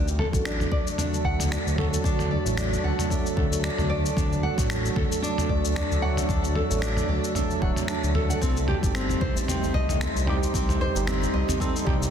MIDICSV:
0, 0, Header, 1, 8, 480
1, 0, Start_track
1, 0, Tempo, 530973
1, 1849, Time_signature, 4, 2, 24, 8
1, 10940, End_track
2, 0, Start_track
2, 0, Title_t, "Ambient pad"
2, 0, Program_c, 0, 92
2, 0, Note_on_c, 0, 66, 73
2, 0, Note_on_c, 0, 69, 67
2, 0, Note_on_c, 0, 74, 69
2, 0, Note_on_c, 0, 81, 81
2, 7574, Note_off_c, 0, 81, 0
2, 7575, Note_off_c, 0, 66, 0
2, 7575, Note_off_c, 0, 69, 0
2, 7576, Note_off_c, 0, 74, 0
2, 7605, Note_on_c, 0, 67, 73
2, 7605, Note_on_c, 0, 75, 74
2, 7607, Note_on_c, 0, 72, 68
2, 7607, Note_on_c, 0, 84, 87
2, 10940, Note_off_c, 0, 67, 0
2, 10940, Note_off_c, 0, 72, 0
2, 10940, Note_off_c, 0, 75, 0
2, 10940, Note_off_c, 0, 84, 0
2, 10940, End_track
3, 0, Start_track
3, 0, Title_t, "Nylon-string guitar"
3, 0, Program_c, 1, 24
3, 172, Note_on_c, 1, 69, 75
3, 246, Note_off_c, 1, 69, 0
3, 409, Note_on_c, 1, 62, 91
3, 638, Note_off_c, 1, 62, 0
3, 649, Note_on_c, 1, 74, 96
3, 776, Note_off_c, 1, 74, 0
3, 889, Note_on_c, 1, 62, 76
3, 1118, Note_off_c, 1, 62, 0
3, 1128, Note_on_c, 1, 78, 96
3, 1358, Note_off_c, 1, 78, 0
3, 1369, Note_on_c, 1, 62, 76
3, 1496, Note_off_c, 1, 62, 0
3, 1608, Note_on_c, 1, 69, 70
3, 1684, Note_off_c, 1, 69, 0
3, 1847, Note_on_c, 1, 62, 98
3, 2077, Note_off_c, 1, 62, 0
3, 2088, Note_on_c, 1, 74, 92
3, 2215, Note_off_c, 1, 74, 0
3, 2327, Note_on_c, 1, 62, 76
3, 2557, Note_off_c, 1, 62, 0
3, 2567, Note_on_c, 1, 78, 91
3, 2797, Note_off_c, 1, 78, 0
3, 2806, Note_on_c, 1, 62, 73
3, 2934, Note_off_c, 1, 62, 0
3, 3045, Note_on_c, 1, 69, 73
3, 3123, Note_off_c, 1, 69, 0
3, 3284, Note_on_c, 1, 62, 90
3, 3516, Note_off_c, 1, 62, 0
3, 3522, Note_on_c, 1, 74, 101
3, 3652, Note_off_c, 1, 74, 0
3, 3766, Note_on_c, 1, 62, 80
3, 3997, Note_off_c, 1, 62, 0
3, 4006, Note_on_c, 1, 78, 104
3, 4237, Note_off_c, 1, 78, 0
3, 4247, Note_on_c, 1, 62, 74
3, 4375, Note_off_c, 1, 62, 0
3, 4482, Note_on_c, 1, 69, 71
3, 4562, Note_off_c, 1, 69, 0
3, 4722, Note_on_c, 1, 62, 98
3, 4955, Note_off_c, 1, 62, 0
3, 4965, Note_on_c, 1, 74, 94
3, 5094, Note_off_c, 1, 74, 0
3, 5203, Note_on_c, 1, 62, 77
3, 5435, Note_off_c, 1, 62, 0
3, 5444, Note_on_c, 1, 78, 97
3, 5676, Note_off_c, 1, 78, 0
3, 5685, Note_on_c, 1, 62, 75
3, 5814, Note_off_c, 1, 62, 0
3, 5926, Note_on_c, 1, 69, 75
3, 6003, Note_off_c, 1, 69, 0
3, 6164, Note_on_c, 1, 62, 94
3, 6396, Note_off_c, 1, 62, 0
3, 6407, Note_on_c, 1, 74, 95
3, 6535, Note_off_c, 1, 74, 0
3, 6648, Note_on_c, 1, 62, 78
3, 6769, Note_off_c, 1, 62, 0
3, 6888, Note_on_c, 1, 78, 75
3, 6964, Note_off_c, 1, 78, 0
3, 7124, Note_on_c, 1, 62, 90
3, 7247, Note_off_c, 1, 62, 0
3, 7364, Note_on_c, 1, 69, 89
3, 7493, Note_off_c, 1, 69, 0
3, 7501, Note_on_c, 1, 78, 69
3, 7597, Note_off_c, 1, 78, 0
3, 7605, Note_on_c, 1, 60, 79
3, 7734, Note_off_c, 1, 60, 0
3, 7849, Note_on_c, 1, 67, 74
3, 7925, Note_off_c, 1, 67, 0
3, 8088, Note_on_c, 1, 60, 93
3, 8318, Note_off_c, 1, 60, 0
3, 8327, Note_on_c, 1, 72, 99
3, 8455, Note_off_c, 1, 72, 0
3, 8567, Note_on_c, 1, 60, 76
3, 8797, Note_off_c, 1, 60, 0
3, 8806, Note_on_c, 1, 75, 95
3, 9037, Note_off_c, 1, 75, 0
3, 9048, Note_on_c, 1, 60, 76
3, 9175, Note_off_c, 1, 60, 0
3, 9287, Note_on_c, 1, 67, 76
3, 9364, Note_off_c, 1, 67, 0
3, 9531, Note_on_c, 1, 60, 91
3, 9759, Note_off_c, 1, 60, 0
3, 9772, Note_on_c, 1, 72, 101
3, 9897, Note_off_c, 1, 72, 0
3, 10008, Note_on_c, 1, 60, 77
3, 10238, Note_off_c, 1, 60, 0
3, 10248, Note_on_c, 1, 75, 96
3, 10478, Note_off_c, 1, 75, 0
3, 10487, Note_on_c, 1, 60, 82
3, 10615, Note_off_c, 1, 60, 0
3, 10724, Note_on_c, 1, 67, 72
3, 10803, Note_off_c, 1, 67, 0
3, 10940, End_track
4, 0, Start_track
4, 0, Title_t, "Synth texture"
4, 0, Program_c, 2, 99
4, 0, Note_on_c, 2, 57, 77
4, 0, Note_on_c, 2, 69, 81
4, 10940, Note_off_c, 2, 57, 0
4, 10940, Note_off_c, 2, 69, 0
4, 10940, End_track
5, 0, Start_track
5, 0, Title_t, "Tine electric piano"
5, 0, Program_c, 3, 4
5, 283, Note_on_c, 3, 54, 71
5, 297, Note_on_c, 3, 57, 65
5, 307, Note_on_c, 3, 62, 67
5, 321, Note_on_c, 3, 66, 80
5, 1574, Note_off_c, 3, 54, 0
5, 1581, Note_off_c, 3, 57, 0
5, 1586, Note_off_c, 3, 62, 0
5, 1589, Note_on_c, 3, 54, 84
5, 1592, Note_off_c, 3, 66, 0
5, 1601, Note_on_c, 3, 57, 79
5, 1612, Note_on_c, 3, 62, 81
5, 1624, Note_on_c, 3, 66, 96
5, 2181, Note_off_c, 3, 54, 0
5, 2187, Note_off_c, 3, 57, 0
5, 2192, Note_off_c, 3, 62, 0
5, 2198, Note_off_c, 3, 66, 0
5, 2199, Note_on_c, 3, 54, 74
5, 2214, Note_on_c, 3, 57, 70
5, 2225, Note_on_c, 3, 62, 64
5, 2236, Note_on_c, 3, 66, 77
5, 2772, Note_off_c, 3, 54, 0
5, 2779, Note_off_c, 3, 57, 0
5, 2785, Note_off_c, 3, 62, 0
5, 2790, Note_off_c, 3, 66, 0
5, 2800, Note_on_c, 3, 54, 80
5, 2804, Note_on_c, 3, 57, 77
5, 2811, Note_on_c, 3, 62, 71
5, 2818, Note_on_c, 3, 69, 83
5, 3019, Note_off_c, 3, 54, 0
5, 3021, Note_off_c, 3, 57, 0
5, 3025, Note_off_c, 3, 62, 0
5, 3028, Note_off_c, 3, 69, 0
5, 3031, Note_on_c, 3, 54, 71
5, 3043, Note_on_c, 3, 57, 71
5, 3054, Note_on_c, 3, 62, 66
5, 3068, Note_on_c, 3, 66, 87
5, 4102, Note_off_c, 3, 54, 0
5, 4108, Note_off_c, 3, 57, 0
5, 4113, Note_off_c, 3, 62, 0
5, 4120, Note_off_c, 3, 66, 0
5, 4124, Note_on_c, 3, 54, 76
5, 4136, Note_on_c, 3, 57, 65
5, 4148, Note_on_c, 3, 62, 69
5, 4160, Note_on_c, 3, 66, 83
5, 5414, Note_off_c, 3, 54, 0
5, 5420, Note_off_c, 3, 57, 0
5, 5426, Note_off_c, 3, 62, 0
5, 5430, Note_on_c, 3, 54, 88
5, 5432, Note_off_c, 3, 66, 0
5, 5442, Note_on_c, 3, 57, 86
5, 5455, Note_on_c, 3, 62, 82
5, 5466, Note_on_c, 3, 66, 99
5, 6021, Note_off_c, 3, 54, 0
5, 6027, Note_off_c, 3, 57, 0
5, 6034, Note_off_c, 3, 62, 0
5, 6039, Note_off_c, 3, 66, 0
5, 6044, Note_on_c, 3, 54, 75
5, 6058, Note_on_c, 3, 57, 67
5, 6069, Note_on_c, 3, 62, 71
5, 6081, Note_on_c, 3, 66, 82
5, 6614, Note_off_c, 3, 54, 0
5, 6621, Note_off_c, 3, 57, 0
5, 6627, Note_off_c, 3, 62, 0
5, 6633, Note_off_c, 3, 66, 0
5, 6637, Note_on_c, 3, 54, 79
5, 6641, Note_on_c, 3, 57, 74
5, 6648, Note_on_c, 3, 62, 72
5, 6655, Note_on_c, 3, 69, 91
5, 6857, Note_off_c, 3, 54, 0
5, 6859, Note_off_c, 3, 57, 0
5, 6863, Note_off_c, 3, 62, 0
5, 6866, Note_off_c, 3, 69, 0
5, 6868, Note_on_c, 3, 54, 73
5, 6880, Note_on_c, 3, 57, 71
5, 6895, Note_on_c, 3, 62, 70
5, 6906, Note_on_c, 3, 66, 82
5, 7586, Note_off_c, 3, 54, 0
5, 7592, Note_off_c, 3, 57, 0
5, 7599, Note_off_c, 3, 62, 0
5, 7605, Note_off_c, 3, 66, 0
5, 7962, Note_on_c, 3, 55, 75
5, 7976, Note_on_c, 3, 60, 65
5, 7987, Note_on_c, 3, 63, 67
5, 8002, Note_on_c, 3, 67, 81
5, 9253, Note_off_c, 3, 55, 0
5, 9260, Note_off_c, 3, 60, 0
5, 9266, Note_off_c, 3, 63, 0
5, 9271, Note_on_c, 3, 55, 86
5, 9273, Note_off_c, 3, 67, 0
5, 9283, Note_on_c, 3, 60, 77
5, 9295, Note_on_c, 3, 63, 77
5, 9307, Note_on_c, 3, 67, 102
5, 9861, Note_off_c, 3, 55, 0
5, 9867, Note_off_c, 3, 60, 0
5, 9873, Note_off_c, 3, 63, 0
5, 9879, Note_off_c, 3, 67, 0
5, 9880, Note_on_c, 3, 55, 81
5, 9893, Note_on_c, 3, 60, 68
5, 9905, Note_on_c, 3, 63, 75
5, 9918, Note_on_c, 3, 67, 82
5, 10452, Note_off_c, 3, 55, 0
5, 10458, Note_off_c, 3, 60, 0
5, 10464, Note_off_c, 3, 63, 0
5, 10471, Note_off_c, 3, 67, 0
5, 10482, Note_on_c, 3, 55, 84
5, 10487, Note_on_c, 3, 60, 79
5, 10492, Note_on_c, 3, 63, 73
5, 10498, Note_on_c, 3, 69, 88
5, 10700, Note_off_c, 3, 55, 0
5, 10702, Note_off_c, 3, 60, 0
5, 10705, Note_off_c, 3, 63, 0
5, 10708, Note_off_c, 3, 69, 0
5, 10712, Note_on_c, 3, 55, 78
5, 10723, Note_on_c, 3, 60, 70
5, 10736, Note_on_c, 3, 63, 72
5, 10748, Note_on_c, 3, 67, 89
5, 10940, Note_off_c, 3, 55, 0
5, 10940, Note_off_c, 3, 60, 0
5, 10940, Note_off_c, 3, 63, 0
5, 10940, Note_off_c, 3, 67, 0
5, 10940, End_track
6, 0, Start_track
6, 0, Title_t, "Analog synth bass"
6, 0, Program_c, 4, 38
6, 0, Note_on_c, 4, 38, 94
6, 223, Note_off_c, 4, 38, 0
6, 301, Note_on_c, 4, 33, 82
6, 586, Note_off_c, 4, 33, 0
6, 648, Note_on_c, 4, 38, 88
6, 733, Note_off_c, 4, 38, 0
6, 1125, Note_on_c, 4, 38, 87
6, 1422, Note_off_c, 4, 38, 0
6, 1501, Note_on_c, 4, 38, 80
6, 1786, Note_off_c, 4, 38, 0
6, 1845, Note_on_c, 4, 38, 93
6, 2142, Note_off_c, 4, 38, 0
6, 2219, Note_on_c, 4, 33, 87
6, 2505, Note_off_c, 4, 33, 0
6, 2566, Note_on_c, 4, 38, 96
6, 2652, Note_off_c, 4, 38, 0
6, 3045, Note_on_c, 4, 38, 87
6, 3342, Note_off_c, 4, 38, 0
6, 3420, Note_on_c, 4, 38, 76
6, 3705, Note_off_c, 4, 38, 0
6, 3766, Note_on_c, 4, 38, 96
6, 4063, Note_off_c, 4, 38, 0
6, 4139, Note_on_c, 4, 33, 81
6, 4425, Note_off_c, 4, 33, 0
6, 4485, Note_on_c, 4, 38, 93
6, 4572, Note_off_c, 4, 38, 0
6, 4966, Note_on_c, 4, 38, 93
6, 5263, Note_off_c, 4, 38, 0
6, 5342, Note_on_c, 4, 38, 73
6, 5627, Note_off_c, 4, 38, 0
6, 5684, Note_on_c, 4, 38, 92
6, 5982, Note_off_c, 4, 38, 0
6, 6059, Note_on_c, 4, 33, 85
6, 6345, Note_off_c, 4, 33, 0
6, 6403, Note_on_c, 4, 38, 91
6, 6491, Note_off_c, 4, 38, 0
6, 6887, Note_on_c, 4, 26, 89
6, 6973, Note_off_c, 4, 26, 0
6, 7262, Note_on_c, 4, 38, 86
6, 7546, Note_off_c, 4, 38, 0
6, 7608, Note_on_c, 4, 36, 99
6, 7904, Note_off_c, 4, 36, 0
6, 7982, Note_on_c, 4, 31, 79
6, 8266, Note_off_c, 4, 31, 0
6, 8329, Note_on_c, 4, 36, 95
6, 8414, Note_off_c, 4, 36, 0
6, 8808, Note_on_c, 4, 36, 93
6, 9104, Note_off_c, 4, 36, 0
6, 9179, Note_on_c, 4, 36, 82
6, 9465, Note_off_c, 4, 36, 0
6, 9528, Note_on_c, 4, 36, 95
6, 9824, Note_off_c, 4, 36, 0
6, 9900, Note_on_c, 4, 31, 87
6, 10185, Note_off_c, 4, 31, 0
6, 10250, Note_on_c, 4, 36, 87
6, 10334, Note_off_c, 4, 36, 0
6, 10727, Note_on_c, 4, 36, 89
6, 10940, Note_off_c, 4, 36, 0
6, 10940, End_track
7, 0, Start_track
7, 0, Title_t, "Djembe"
7, 7992, Note_on_c, 9, 62, 30
7, 8083, Note_off_c, 9, 62, 0
7, 8222, Note_on_c, 9, 62, 31
7, 8227, Note_on_c, 9, 63, 31
7, 8312, Note_off_c, 9, 62, 0
7, 8317, Note_off_c, 9, 63, 0
7, 8461, Note_on_c, 9, 64, 87
7, 8551, Note_off_c, 9, 64, 0
7, 8705, Note_on_c, 9, 64, 79
7, 8795, Note_off_c, 9, 64, 0
7, 8807, Note_on_c, 9, 62, 36
7, 8812, Note_on_c, 9, 63, 32
7, 8897, Note_off_c, 9, 62, 0
7, 8903, Note_off_c, 9, 63, 0
7, 9283, Note_on_c, 9, 63, 35
7, 9374, Note_off_c, 9, 63, 0
7, 9901, Note_on_c, 9, 62, 34
7, 9991, Note_off_c, 9, 62, 0
7, 10142, Note_on_c, 9, 62, 37
7, 10149, Note_on_c, 9, 63, 33
7, 10232, Note_off_c, 9, 62, 0
7, 10240, Note_off_c, 9, 63, 0
7, 10379, Note_on_c, 9, 64, 73
7, 10470, Note_off_c, 9, 64, 0
7, 10727, Note_on_c, 9, 63, 34
7, 10818, Note_off_c, 9, 63, 0
7, 10863, Note_on_c, 9, 64, 87
7, 10940, Note_off_c, 9, 64, 0
7, 10940, End_track
8, 0, Start_track
8, 0, Title_t, "Drums"
8, 71, Note_on_c, 9, 82, 31
8, 161, Note_off_c, 9, 82, 0
8, 171, Note_on_c, 9, 45, 76
8, 261, Note_off_c, 9, 45, 0
8, 301, Note_on_c, 9, 36, 106
8, 310, Note_on_c, 9, 82, 62
8, 391, Note_off_c, 9, 36, 0
8, 400, Note_off_c, 9, 82, 0
8, 411, Note_on_c, 9, 26, 93
8, 417, Note_on_c, 9, 82, 48
8, 501, Note_off_c, 9, 26, 0
8, 507, Note_off_c, 9, 82, 0
8, 545, Note_on_c, 9, 45, 70
8, 551, Note_on_c, 9, 82, 29
8, 635, Note_off_c, 9, 45, 0
8, 642, Note_off_c, 9, 82, 0
8, 647, Note_on_c, 9, 36, 101
8, 738, Note_off_c, 9, 36, 0
8, 788, Note_on_c, 9, 82, 60
8, 878, Note_off_c, 9, 82, 0
8, 888, Note_on_c, 9, 45, 75
8, 894, Note_on_c, 9, 82, 55
8, 978, Note_off_c, 9, 45, 0
8, 985, Note_off_c, 9, 82, 0
8, 1030, Note_on_c, 9, 82, 33
8, 1121, Note_off_c, 9, 82, 0
8, 1126, Note_on_c, 9, 36, 49
8, 1217, Note_off_c, 9, 36, 0
8, 1264, Note_on_c, 9, 45, 72
8, 1271, Note_on_c, 9, 82, 64
8, 1355, Note_off_c, 9, 45, 0
8, 1361, Note_off_c, 9, 82, 0
8, 1373, Note_on_c, 9, 26, 98
8, 1380, Note_on_c, 9, 82, 55
8, 1464, Note_off_c, 9, 26, 0
8, 1470, Note_off_c, 9, 82, 0
8, 1512, Note_on_c, 9, 82, 28
8, 1603, Note_off_c, 9, 82, 0
8, 1612, Note_on_c, 9, 45, 86
8, 1702, Note_off_c, 9, 45, 0
8, 1750, Note_on_c, 9, 82, 60
8, 1840, Note_off_c, 9, 82, 0
8, 1845, Note_on_c, 9, 36, 121
8, 1857, Note_on_c, 9, 82, 57
8, 1936, Note_off_c, 9, 36, 0
8, 1947, Note_off_c, 9, 82, 0
8, 1981, Note_on_c, 9, 45, 75
8, 1987, Note_on_c, 9, 82, 31
8, 2072, Note_off_c, 9, 45, 0
8, 2078, Note_off_c, 9, 82, 0
8, 2227, Note_on_c, 9, 82, 67
8, 2317, Note_off_c, 9, 82, 0
8, 2327, Note_on_c, 9, 26, 94
8, 2327, Note_on_c, 9, 45, 71
8, 2334, Note_on_c, 9, 82, 53
8, 2418, Note_off_c, 9, 26, 0
8, 2418, Note_off_c, 9, 45, 0
8, 2424, Note_off_c, 9, 82, 0
8, 2470, Note_on_c, 9, 82, 31
8, 2561, Note_off_c, 9, 82, 0
8, 2702, Note_on_c, 9, 45, 70
8, 2709, Note_on_c, 9, 82, 61
8, 2793, Note_off_c, 9, 45, 0
8, 2799, Note_off_c, 9, 82, 0
8, 2806, Note_on_c, 9, 36, 67
8, 2815, Note_on_c, 9, 82, 55
8, 2897, Note_off_c, 9, 36, 0
8, 2905, Note_off_c, 9, 82, 0
8, 2949, Note_on_c, 9, 82, 33
8, 3039, Note_off_c, 9, 82, 0
8, 3046, Note_on_c, 9, 36, 95
8, 3046, Note_on_c, 9, 45, 70
8, 3136, Note_off_c, 9, 36, 0
8, 3136, Note_off_c, 9, 45, 0
8, 3187, Note_on_c, 9, 82, 65
8, 3277, Note_off_c, 9, 82, 0
8, 3290, Note_on_c, 9, 26, 106
8, 3296, Note_on_c, 9, 82, 55
8, 3380, Note_off_c, 9, 26, 0
8, 3386, Note_off_c, 9, 82, 0
8, 3422, Note_on_c, 9, 45, 75
8, 3428, Note_on_c, 9, 82, 31
8, 3512, Note_off_c, 9, 45, 0
8, 3518, Note_off_c, 9, 82, 0
8, 3668, Note_on_c, 9, 82, 64
8, 3758, Note_off_c, 9, 82, 0
8, 3767, Note_on_c, 9, 36, 110
8, 3770, Note_on_c, 9, 45, 74
8, 3776, Note_on_c, 9, 82, 54
8, 3857, Note_off_c, 9, 36, 0
8, 3860, Note_off_c, 9, 45, 0
8, 3867, Note_off_c, 9, 82, 0
8, 3910, Note_on_c, 9, 82, 32
8, 4001, Note_off_c, 9, 82, 0
8, 4140, Note_on_c, 9, 36, 112
8, 4142, Note_on_c, 9, 45, 66
8, 4148, Note_on_c, 9, 82, 61
8, 4230, Note_off_c, 9, 36, 0
8, 4232, Note_off_c, 9, 45, 0
8, 4239, Note_off_c, 9, 82, 0
8, 4248, Note_on_c, 9, 26, 97
8, 4254, Note_on_c, 9, 82, 57
8, 4338, Note_off_c, 9, 26, 0
8, 4344, Note_off_c, 9, 82, 0
8, 4388, Note_on_c, 9, 82, 34
8, 4478, Note_off_c, 9, 82, 0
8, 4485, Note_on_c, 9, 36, 101
8, 4487, Note_on_c, 9, 45, 76
8, 4576, Note_off_c, 9, 36, 0
8, 4577, Note_off_c, 9, 45, 0
8, 4628, Note_on_c, 9, 82, 66
8, 4719, Note_off_c, 9, 82, 0
8, 4735, Note_on_c, 9, 82, 55
8, 4825, Note_off_c, 9, 82, 0
8, 4865, Note_on_c, 9, 45, 75
8, 4872, Note_on_c, 9, 82, 33
8, 4956, Note_off_c, 9, 45, 0
8, 4962, Note_off_c, 9, 82, 0
8, 4966, Note_on_c, 9, 36, 54
8, 5056, Note_off_c, 9, 36, 0
8, 5107, Note_on_c, 9, 82, 67
8, 5197, Note_off_c, 9, 82, 0
8, 5210, Note_on_c, 9, 26, 101
8, 5210, Note_on_c, 9, 45, 77
8, 5216, Note_on_c, 9, 82, 61
8, 5300, Note_off_c, 9, 26, 0
8, 5300, Note_off_c, 9, 45, 0
8, 5306, Note_off_c, 9, 82, 0
8, 5349, Note_on_c, 9, 82, 32
8, 5439, Note_off_c, 9, 82, 0
8, 5581, Note_on_c, 9, 45, 71
8, 5587, Note_on_c, 9, 82, 67
8, 5671, Note_off_c, 9, 45, 0
8, 5678, Note_off_c, 9, 82, 0
8, 5685, Note_on_c, 9, 36, 115
8, 5692, Note_on_c, 9, 82, 56
8, 5775, Note_off_c, 9, 36, 0
8, 5783, Note_off_c, 9, 82, 0
8, 5824, Note_on_c, 9, 82, 35
8, 5915, Note_off_c, 9, 82, 0
8, 5926, Note_on_c, 9, 45, 73
8, 6016, Note_off_c, 9, 45, 0
8, 6066, Note_on_c, 9, 82, 65
8, 6156, Note_off_c, 9, 82, 0
8, 6165, Note_on_c, 9, 26, 92
8, 6171, Note_on_c, 9, 82, 52
8, 6255, Note_off_c, 9, 26, 0
8, 6262, Note_off_c, 9, 82, 0
8, 6299, Note_on_c, 9, 45, 70
8, 6305, Note_on_c, 9, 82, 31
8, 6389, Note_off_c, 9, 45, 0
8, 6396, Note_off_c, 9, 82, 0
8, 6547, Note_on_c, 9, 82, 63
8, 6638, Note_off_c, 9, 82, 0
8, 6646, Note_on_c, 9, 45, 71
8, 6647, Note_on_c, 9, 36, 64
8, 6652, Note_on_c, 9, 82, 54
8, 6736, Note_off_c, 9, 45, 0
8, 6737, Note_off_c, 9, 36, 0
8, 6743, Note_off_c, 9, 82, 0
8, 6785, Note_on_c, 9, 82, 37
8, 6876, Note_off_c, 9, 82, 0
8, 6887, Note_on_c, 9, 36, 95
8, 6977, Note_off_c, 9, 36, 0
8, 7019, Note_on_c, 9, 45, 70
8, 7025, Note_on_c, 9, 82, 64
8, 7109, Note_off_c, 9, 45, 0
8, 7116, Note_off_c, 9, 82, 0
8, 7125, Note_on_c, 9, 26, 94
8, 7131, Note_on_c, 9, 82, 57
8, 7215, Note_off_c, 9, 26, 0
8, 7222, Note_off_c, 9, 82, 0
8, 7266, Note_on_c, 9, 82, 32
8, 7356, Note_off_c, 9, 82, 0
8, 7368, Note_on_c, 9, 45, 79
8, 7458, Note_off_c, 9, 45, 0
8, 7507, Note_on_c, 9, 82, 64
8, 7597, Note_off_c, 9, 82, 0
8, 7609, Note_on_c, 9, 36, 108
8, 7613, Note_on_c, 9, 82, 56
8, 7699, Note_off_c, 9, 36, 0
8, 7704, Note_off_c, 9, 82, 0
8, 7745, Note_on_c, 9, 82, 31
8, 7836, Note_off_c, 9, 82, 0
8, 7845, Note_on_c, 9, 45, 74
8, 7935, Note_off_c, 9, 45, 0
8, 7982, Note_on_c, 9, 36, 104
8, 7988, Note_on_c, 9, 82, 66
8, 8072, Note_off_c, 9, 36, 0
8, 8078, Note_off_c, 9, 82, 0
8, 8090, Note_on_c, 9, 26, 85
8, 8096, Note_on_c, 9, 82, 49
8, 8180, Note_off_c, 9, 26, 0
8, 8186, Note_off_c, 9, 82, 0
8, 8223, Note_on_c, 9, 45, 66
8, 8229, Note_on_c, 9, 82, 29
8, 8313, Note_off_c, 9, 45, 0
8, 8319, Note_off_c, 9, 82, 0
8, 8328, Note_on_c, 9, 36, 103
8, 8418, Note_off_c, 9, 36, 0
8, 8470, Note_on_c, 9, 82, 61
8, 8561, Note_off_c, 9, 82, 0
8, 8573, Note_on_c, 9, 45, 73
8, 8579, Note_on_c, 9, 82, 51
8, 8663, Note_off_c, 9, 45, 0
8, 8670, Note_off_c, 9, 82, 0
8, 8712, Note_on_c, 9, 82, 34
8, 8803, Note_off_c, 9, 82, 0
8, 8808, Note_on_c, 9, 36, 56
8, 8898, Note_off_c, 9, 36, 0
8, 8942, Note_on_c, 9, 45, 72
8, 8949, Note_on_c, 9, 82, 65
8, 9033, Note_off_c, 9, 45, 0
8, 9039, Note_off_c, 9, 82, 0
8, 9050, Note_on_c, 9, 26, 92
8, 9056, Note_on_c, 9, 82, 56
8, 9140, Note_off_c, 9, 26, 0
8, 9146, Note_off_c, 9, 82, 0
8, 9190, Note_on_c, 9, 82, 31
8, 9280, Note_off_c, 9, 82, 0
8, 9287, Note_on_c, 9, 45, 72
8, 9378, Note_off_c, 9, 45, 0
8, 9430, Note_on_c, 9, 82, 59
8, 9520, Note_off_c, 9, 82, 0
8, 9528, Note_on_c, 9, 36, 113
8, 9536, Note_on_c, 9, 82, 57
8, 9619, Note_off_c, 9, 36, 0
8, 9627, Note_off_c, 9, 82, 0
8, 9664, Note_on_c, 9, 45, 80
8, 9671, Note_on_c, 9, 82, 30
8, 9755, Note_off_c, 9, 45, 0
8, 9761, Note_off_c, 9, 82, 0
8, 9909, Note_on_c, 9, 82, 59
8, 10000, Note_off_c, 9, 82, 0
8, 10011, Note_on_c, 9, 26, 94
8, 10011, Note_on_c, 9, 45, 69
8, 10017, Note_on_c, 9, 82, 50
8, 10101, Note_off_c, 9, 26, 0
8, 10101, Note_off_c, 9, 45, 0
8, 10108, Note_off_c, 9, 82, 0
8, 10153, Note_on_c, 9, 82, 30
8, 10244, Note_off_c, 9, 82, 0
8, 10385, Note_on_c, 9, 45, 73
8, 10391, Note_on_c, 9, 82, 59
8, 10476, Note_off_c, 9, 45, 0
8, 10482, Note_off_c, 9, 82, 0
8, 10488, Note_on_c, 9, 36, 64
8, 10498, Note_on_c, 9, 82, 53
8, 10578, Note_off_c, 9, 36, 0
8, 10589, Note_off_c, 9, 82, 0
8, 10632, Note_on_c, 9, 82, 33
8, 10723, Note_off_c, 9, 82, 0
8, 10727, Note_on_c, 9, 36, 93
8, 10730, Note_on_c, 9, 45, 71
8, 10818, Note_off_c, 9, 36, 0
8, 10821, Note_off_c, 9, 45, 0
8, 10872, Note_on_c, 9, 82, 63
8, 10940, Note_off_c, 9, 82, 0
8, 10940, End_track
0, 0, End_of_file